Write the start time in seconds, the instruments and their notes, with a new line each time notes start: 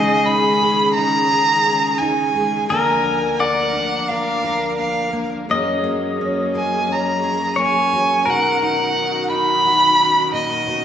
Already playing: steel-string acoustic guitar C#3 G#3 D#4 G#4, string section D#3 G#3 C#4 G#4, pedal steel guitar G#4, violin D#5
0.25 steel-string acoustic guitar D#4, violin B5
0.63 steel-string acoustic guitar G#4
0.94 steel-string acoustic guitar D#4, violin A#5
1.32 steel-string acoustic guitar G#4
1.66 steel-string acoustic guitar G#4
1.98 steel-string acoustic guitar D#4, violin G#5
2.35 steel-string acoustic guitar G#3
2.69 string section D2 F3 A#3 D4 A#4, steel-string acoustic guitar D3 A#3 D4 A#4, pedal steel guitar A#4, violin G#5
3.05 steel-string acoustic guitar D4
3.39 steel-string acoustic guitar A#4, pedal steel guitar D5, violin F#5
3.75 steel-string acoustic guitar D4
4.08 steel-string acoustic guitar A#4, violin F5
4.44 steel-string acoustic guitar A#4
4.78 steel-string acoustic guitar D4, violin F5
5.13 steel-string acoustic guitar A#3
5.48 steel-string acoustic guitar F#2 F#3 A#3 C#4 G#4, string section F#3 C#4 G#4, pedal steel guitar D#5
5.84 steel-string acoustic guitar A#3
6.21 steel-string acoustic guitar C#4
6.55 steel-string acoustic guitar A#3, violin G#5
6.89 steel-string acoustic guitar C#4, violin A#5
7.24 steel-string acoustic guitar G#4
7.56 steel-string acoustic guitar A#3, pedal steel guitar C#5
7.62 violin G#5
7.93 steel-string acoustic guitar F#3
8.25 steel-string acoustic guitar B2, string section D#3 D#4 F#4, pedal steel guitar A#4
8.29 violin F#5
8.62 steel-string acoustic guitar D#4, violin F#5
8.96 steel-string acoustic guitar F#4
9.30 steel-string acoustic guitar D#4, violin B5
9.65 steel-string acoustic guitar F#4
10.33 steel-string acoustic guitar A#2, violin D#5
10.67 steel-string acoustic guitar B2